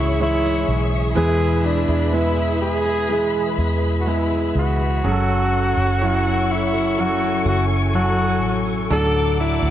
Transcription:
Already playing: fingered electric bass C#2, steel-string acoustic guitar C#3 E3 E4 G#4, grand piano G#3 D#4 E4 C#5, alto saxophone E4, string section G#4 C#5 E5 C#6
0.20 steel-string acoustic guitar E3, grand piano G#3 E4 C#5, alto saxophone E4
0.44 steel-string acoustic guitar G#4
0.67 fingered electric bass B1, steel-string acoustic guitar E4
0.92 steel-string acoustic guitar G#4
1.15 fingered electric bass E2, grand piano B2 G#3 E4 B4, steel-string acoustic guitar E3, alto saxophone G#4, string section B4 B5
1.40 steel-string acoustic guitar E4
1.64 alto saxophone D4, steel-string acoustic guitar G#4
1.87 fingered electric bass E2, steel-string acoustic guitar E4
2.12 grand piano G#3 E4 B4, steel-string acoustic guitar B3, alto saxophone E4
2.36 steel-string acoustic guitar G#4
2.61 steel-string acoustic guitar E4, alto saxophone G#4
2.85 steel-string acoustic guitar G#4
3.09 steel-string acoustic guitar E3, grand piano G#3 E4 G#4
3.34 steel-string acoustic guitar E4
3.58 fingered electric bass E2, steel-string acoustic guitar G#4
3.82 steel-string acoustic guitar E4
4.01 alto saxophone F#4
4.06 grand piano G#3 E4 B4, steel-string acoustic guitar B3, alto saxophone E4
4.31 steel-string acoustic guitar G#4
4.55 fingered electric bass C#2, steel-string acoustic guitar E4, alto saxophone F#4
4.80 steel-string acoustic guitar G#4
5.04 fingered electric bass F#1, steel-string acoustic guitar F#2, grand piano C#3 F#3 C#4 G#4, string section A4 C#5 F#5 C#6
5.11 grand piano A4
5.52 steel-string acoustic guitar F#4
5.77 fingered electric bass F#1, steel-string acoustic guitar C#4
6.01 grand piano F#3 C#4 E4, steel-string acoustic guitar F#3
6.25 steel-string acoustic guitar F#4
6.49 steel-string acoustic guitar C#4, alto saxophone E4
6.74 steel-string acoustic guitar F#4
6.98 steel-string acoustic guitar F#2, grand piano F#3 C#4 E4, alto saxophone F#4, string section G#5
7.21 steel-string acoustic guitar C#4
7.45 fingered electric bass F#1, steel-string acoustic guitar F#4, alto saxophone F#4
7.70 steel-string acoustic guitar C#4
7.93 steel-string acoustic guitar F#3, grand piano F#3 C#4 A4, alto saxophone F#4
8.18 steel-string acoustic guitar F#4
8.42 fingered electric bass A1, steel-string acoustic guitar C#4
8.66 steel-string acoustic guitar F#4
8.90 fingered electric bass D2, grand piano A2 F#3 D4 A4, steel-string acoustic guitar D3, alto saxophone A4, string section D5 F#5 D6
9.14 steel-string acoustic guitar D4
9.38 alto saxophone E4, steel-string acoustic guitar F#4
9.62 fingered electric bass D2, steel-string acoustic guitar D4

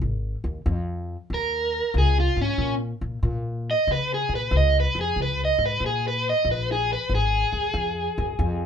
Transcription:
0.02 upright bass G#1
0.44 upright bass D#2
0.66 upright bass F2
1.30 upright bass D#2
1.34 overdriven electric guitar A#4
1.94 upright bass C#2
1.98 overdriven electric guitar G#4
2.20 overdriven electric guitar F4
2.37 upright bass G#2
2.41 overdriven electric guitar C#4
2.58 upright bass A#2
3.01 upright bass A#2
3.23 upright bass A#2
3.71 overdriven electric guitar D#5
3.87 upright bass C#3
3.92 overdriven electric guitar B4
4.14 overdriven electric guitar G#4
4.29 upright bass A#2
4.35 overdriven electric guitar B4
4.51 upright bass C#2
4.57 overdriven electric guitar D#5
4.80 overdriven electric guitar B4
4.95 upright bass F2
5.01 overdriven electric guitar G#4
5.16 upright bass C#2
5.22 overdriven electric guitar B4
5.45 overdriven electric guitar D#5
5.58 upright bass G#2
5.66 overdriven electric guitar B4
5.80 upright bass A#2
5.86 overdriven electric guitar G#4
6.08 overdriven electric guitar B4
6.29 overdriven electric guitar D#5
6.45 upright bass A#1
6.51 overdriven electric guitar B4
6.72 overdriven electric guitar G#4
6.93 overdriven electric guitar B4
7.09 upright bass G#1
7.15 overdriven electric guitar G#4
7.52 upright bass D#2
7.74 upright bass F2
8.18 upright bass F#2
8.39 upright bass F2

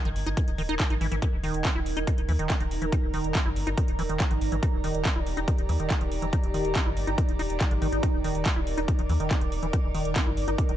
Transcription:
Already playing: analog synth pad D#4 A#4 D#5 G#6
0.05 analog synth bass G1, acid bass D#3, closed hi-hat
0.16 analog synth bass G1, open hi-hat
0.26 analog synth bass G1, acid bass D#4, closed hi-hat
0.37 acid bass D#3, kick, closed hi-hat
0.48 analog synth bass D#1, closed hi-hat
0.58 analog synth bass D#1, acid bass D#3, open hi-hat
0.69 analog synth bass D#1, acid bass D#4, closed hi-hat
0.80 acid bass D#4, kick, clap, closed hi-hat
0.90 analog synth bass G#1, acid bass D#4, closed hi-hat
1.01 analog synth bass G#1, acid bass E3, open hi-hat
1.12 analog synth bass G#1, acid bass E3, closed hi-hat
1.22 acid bass D#3, ambient pad D#4 A#4, kick, closed hi-hat
1.33 analog synth bass D#1
1.44 analog synth bass D#1, acid bass D#3, open hi-hat
1.54 analog synth bass D#1, closed hi-hat
1.65 acid bass E4, kick, clap, closed hi-hat
1.75 analog synth bass D#1, acid bass E4
1.86 analog synth bass D#1, open hi-hat
1.97 analog synth bass D#1, acid bass D#4, closed hi-hat
2.01 analog synth pad A#5
2.07 acid bass D#3, kick, closed hi-hat
2.18 analog synth bass D#1, closed hi-hat
2.29 analog synth bass D#2, acid bass E3, open hi-hat
2.39 analog synth bass D#1, acid bass D#3, closed hi-hat
2.50 acid bass E4, kick, clap, closed hi-hat
2.60 analog synth bass D#1, acid bass D#3, closed hi-hat
2.71 analog synth bass D#1, open hi-hat
2.82 analog synth bass D#1, acid bass E3, analog synth pad D5, closed hi-hat
2.92 acid bass D#3, kick, closed hi-hat
3.03 analog synth bass D#1
3.14 analog synth bass D#1, acid bass D#3, open hi-hat
3.24 analog synth bass D#1, closed hi-hat
3.35 acid bass E4, kick, clap, closed hi-hat
3.46 analog synth bass G1, acid bass E4
3.56 analog synth bass G1, open hi-hat
3.67 analog synth bass G1, acid bass D#4, closed hi-hat
3.78 acid bass D#3, kick, closed hi-hat
3.88 analog synth bass D#1, closed hi-hat
3.99 analog synth bass D#1, acid bass E3, open hi-hat
4.09 analog synth bass D#1, acid bass D#3, closed hi-hat
4.20 acid bass E4, kick, clap, closed hi-hat
4.31 analog synth bass G#1, acid bass D#3, closed hi-hat
4.41 analog synth bass G#1, open hi-hat
4.52 analog synth bass G#1, acid bass E3, closed hi-hat
4.63 acid bass D#3, ambient pad G4, kick, closed hi-hat
4.73 analog synth bass D#1
4.84 analog synth bass D#1, acid bass D#3, open hi-hat
4.95 analog synth bass D#1, closed hi-hat
5.05 acid bass E4, kick, clap, closed hi-hat
5.16 analog synth bass D#1, acid bass E4
5.26 analog synth bass D#1, open hi-hat
5.37 analog synth bass D#1, acid bass D#4, closed hi-hat
5.48 acid bass D#3, kick, closed hi-hat
5.58 analog synth bass D#1, closed hi-hat
5.69 analog synth bass D#2, acid bass E3, open hi-hat
5.80 analog synth bass D#1, acid bass D#3, closed hi-hat
5.90 acid bass E4, kick, clap, closed hi-hat
6.01 analog synth bass D#1, acid bass D#3, closed hi-hat
6.12 analog synth bass D#1, open hi-hat
6.22 analog synth bass D#1, acid bass E3, closed hi-hat
6.33 acid bass D#3, kick, closed hi-hat
6.44 analog synth bass D#1, closed hi-hat
6.54 analog synth bass D#1, acid bass D#3, open hi-hat
6.65 analog synth bass D#1, closed hi-hat
6.75 acid bass E4, kick, clap, closed hi-hat
6.86 analog synth bass G1, acid bass E4
6.97 analog synth bass G1, open hi-hat
7.07 analog synth bass G1, acid bass D#4, closed hi-hat
7.18 acid bass D#3, kick, closed hi-hat
7.29 analog synth bass D#1, closed hi-hat
7.39 analog synth bass D#1, acid bass D#4, open hi-hat
7.50 analog synth bass D#1, closed hi-hat
7.61 acid bass D#3, kick, clap, closed hi-hat
7.71 analog synth bass G#1, acid bass D3, closed hi-hat
7.82 analog synth bass G#1, acid bass D#3, open hi-hat
7.92 analog synth bass G#1, acid bass D#4, closed hi-hat
8.03 acid bass D#3, ambient pad A#4, kick, closed hi-hat
8.14 analog synth bass D#1
8.24 analog synth bass D#1, acid bass D#3, open hi-hat
8.35 analog synth bass D#1, closed hi-hat
8.46 acid bass E4, kick, clap, closed hi-hat
8.56 analog synth bass D#1, acid bass E4
8.67 analog synth bass D#1, open hi-hat
8.78 analog synth bass D#1, acid bass D#4, closed hi-hat
8.82 analog synth pad D6
8.88 acid bass D#3, kick, closed hi-hat
8.99 analog synth bass D#1, acid bass D#3, closed hi-hat
9.09 analog synth bass D#2, acid bass E3, open hi-hat
9.20 analog synth bass D#1, acid bass D#3, closed hi-hat
9.31 acid bass E4, kick, clap, closed hi-hat
9.41 analog synth bass D#1, acid bass D#3, closed hi-hat
9.52 analog synth bass D#1, open hi-hat
9.63 analog synth bass D#1, acid bass E3, closed hi-hat
9.73 acid bass D#3, kick, closed hi-hat
9.84 analog synth bass D#1
9.95 analog synth bass D#1, acid bass D#3, open hi-hat
10.05 analog synth bass D#1, closed hi-hat
10.16 acid bass E4, kick, clap, closed hi-hat
10.26 analog synth bass G1, acid bass E4
10.37 analog synth bass G1, open hi-hat
10.48 analog synth bass G1, acid bass D#4, closed hi-hat
10.58 acid bass D#3, kick, closed hi-hat
10.69 analog synth bass D#1, acid bass D#3, closed hi-hat

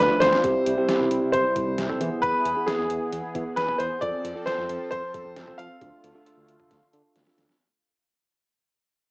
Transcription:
Already playing: analog synth pad F4 D5 A5, grand piano B4
0.10 tine electric piano F3 A3 D4 F4
0.20 analog synth bass D2, grand piano C5, snare, closed hi-hat
0.33 snare
0.44 analog synth bass C2, analog synth pad C3 G3 E4, tine electric piano C4 E4 G4, kick, closed hi-hat
0.66 analog synth bass C2, closed hi-hat
0.78 tine electric piano C4 E4 G4
0.89 tine electric piano C4 E4 G4, snare, closed hi-hat
1.00 analog synth bass C2
1.11 analog synth bass C2, closed hi-hat
1.32 analog synth bass C2, grand piano C5, kick, closed hi-hat
1.56 analog synth bass C2, tine electric piano C4 E4 G4, kick, closed hi-hat
1.67 analog synth bass C2
1.78 analog synth bass C2, snare, closed hi-hat
1.89 tine electric piano C4 E4 A4, mid tom
2.00 analog synth bass E3, analog synth pad E3 B3 G#4, tine electric piano B3 E4 G#4, closed hi-hat
2.22 analog synth bass E2, grand piano B4, kick, closed hi-hat
2.45 analog synth bass E2, closed hi-hat
2.56 tine electric piano B3 E4 G#4
2.66 tine electric piano B3 E4 G#4, grand piano G#4, snare, closed hi-hat
2.79 analog synth bass E2
2.90 analog synth bass E2, closed hi-hat
3.12 analog synth bass E2, closed hi-hat
3.35 analog synth bass E3, tine electric piano B3 E4 G#4, kick, closed hi-hat
3.56 analog synth bass E2, grand piano B4, snare, closed hi-hat
3.68 tine electric piano B3 E4 G#4, mid tom
3.78 analog synth bass E2, grand piano C5, closed hi-hat
4.01 analog synth bass F2, analog synth pad F3 C4 A4, tine electric piano C4 F4 A4, grand piano D5, kick, closed hi-hat
4.25 analog synth bass F2, closed hi-hat
4.35 tine electric piano C4 F4 A4
4.46 tine electric piano C4 F4 A4, grand piano C5, snare, closed hi-hat
4.58 analog synth bass F2
4.69 analog synth bass F2, closed hi-hat
4.91 analog synth bass F2, grand piano C5, kick, closed hi-hat
5.14 analog synth bass F2, tine electric piano C4 F4 A4, kick, closed hi-hat
5.25 analog synth bass F2
5.36 analog synth bass F2, snare, closed hi-hat
5.48 tine electric piano C4 F4 A4, mid tom
5.58 analog synth bass F3, grand piano F5, closed hi-hat
5.81 analog synth bass D2, analog synth pad D3 A3 F4, tine electric piano D4 F4 A4, kick, closed hi-hat
6.04 analog synth bass D2, closed hi-hat
6.15 tine electric piano D4 F4 A4
6.26 tine electric piano D4 F4 A4, closed hi-hat
6.37 analog synth bass D2
6.48 analog synth bass D2, closed hi-hat
6.60 mid tom
6.71 analog synth bass D2, kick, snare, closed hi-hat
6.93 analog synth bass D3, tine electric piano D4 F4 A4, closed hi-hat
7.16 analog synth bass D2, snare, closed hi-hat
7.27 tine electric piano D4 F4 A4, snare
7.38 analog synth bass D2, snare, closed hi-hat
7.49 snare

